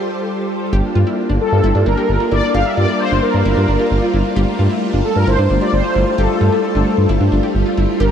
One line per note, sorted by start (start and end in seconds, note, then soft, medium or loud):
0.00 0.69 G3 medium
0.00 0.69 F4 medium
0.00 0.23 G4 loud
0.00 0.69 A4 medium
0.00 0.69 C5 medium
0.73 0.81 G1 loud
0.73 8.11 G3 medium
0.73 4.33 A#3 medium
0.73 4.33 D4 medium
0.73 8.11 F4 medium
0.73 0.93 G4 medium
0.95 1.04 G2 medium
0.95 1.05 F4 medium
1.07 1.27 E4 medium
1.29 1.38 G1 medium
1.29 1.50 D4 medium
1.41 1.83 A4 medium
1.52 1.61 G2 loud
1.64 1.72 G1 loud
1.64 1.74 E4 medium
1.75 1.84 G2 medium
1.75 1.85 D4 medium
1.86 1.95 G1 loud
1.86 1.96 D4 medium
1.86 2.33 A#4 loud
1.98 2.18 G4 medium
2.09 2.18 G1 medium
2.20 2.30 F4 medium
2.31 2.40 G1 loud
2.31 2.52 E4 medium
2.31 2.55 D5 loud
2.54 2.63 G1 loud
2.54 2.75 G4 loud
2.54 2.65 F5 loud
2.65 2.71 E5 loud
2.77 2.86 G2 loud
2.77 2.87 F4 medium
2.77 3.00 D5 loud
2.88 3.09 E4 medium
3.00 3.23 C5 loud
3.11 3.20 G1 medium
3.11 3.31 D4 medium
3.22 3.44 A#4 medium
3.34 3.43 G2 loud
3.45 3.54 G1 loud
3.45 3.55 E4 medium
3.45 4.09 A#4 medium
3.57 3.66 G2 loud
3.57 3.67 D4 medium
3.68 3.77 G1 loud
3.68 3.78 D4 medium
3.79 4.00 G4 medium
3.91 4.00 G1 loud
4.02 4.12 F4 medium
4.13 4.22 G1 loud
4.13 4.34 E4 medium
4.36 4.45 G1 loud
4.36 7.96 A3 medium
4.36 4.56 G4 medium
4.59 4.68 G2 loud
4.59 4.69 F4 medium
4.70 4.91 E4 medium
4.93 5.02 G1 loud
4.93 5.13 D4 medium
5.05 5.15 A4 medium
5.16 5.25 G2 medium
5.16 5.27 A#4 medium
5.27 5.36 G1 loud
5.27 5.37 E4 medium
5.27 5.62 C5 loud
5.39 5.47 G2 loud
5.39 5.49 D4 medium
5.50 5.59 G1 loud
5.50 5.60 D4 medium
5.61 5.81 G4 medium
5.61 5.72 D5 loud
5.73 5.81 G1 loud
5.73 6.20 C5 loud
5.84 5.94 F4 medium
5.95 6.04 G1 loud
5.95 6.16 E4 medium
6.18 6.27 G1 loud
6.18 6.38 G4 medium
6.18 7.73 A4 loud
6.41 6.50 G2 loud
6.41 6.51 F4 medium
6.52 6.72 E4 medium
6.75 6.84 G1 loud
6.75 6.95 D4 medium
6.98 7.06 G2 medium
7.09 7.18 G1 loud
7.09 7.19 E4 medium
7.20 7.29 G2 medium
7.20 7.31 D4 medium
7.32 7.40 G1 loud
7.32 7.42 D4 medium
7.43 7.63 G4 medium
7.55 7.63 G1 loud
7.66 7.76 F4 medium
7.77 7.86 G1 loud
7.77 7.98 E4 medium
8.00 8.09 G1 loud
8.00 8.11 D4 medium
8.00 8.11 G4 loud
8.00 8.11 A#4 medium